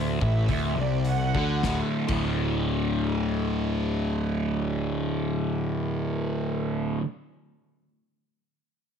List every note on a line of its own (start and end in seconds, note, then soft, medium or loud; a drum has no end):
0.00 0.18 D1 medium
0.00 0.20 D2 medium
0.20 0.47 A1 medium
0.20 0.48 A2 medium
0.20 0.74 E5 medium
0.20 kick medium
0.49 0.75 D1 medium
0.49 0.76 D2 medium
0.49 kick medium
0.49 open hi-hat soft
0.76 1.31 C2 medium
0.76 1.34 C3 medium
0.76 1.05 D5 medium
1.05 1.66 F#5 medium
1.05 open hi-hat soft
1.34 1.63 D2 medium
1.34 1.64 D3 medium
1.34 kick medium
1.62 1.81 D1 medium
1.62 2.07 D2 medium
1.62 2.09 A2 medium
1.62 kick medium
1.62 snare medium
1.67 2.11 D3 medium
2.07 6.97 D1 medium
2.07 6.99 D2 medium
2.07 7.02 A2 medium
2.07 kick medium
2.07 crash medium
2.12 7.03 D3 medium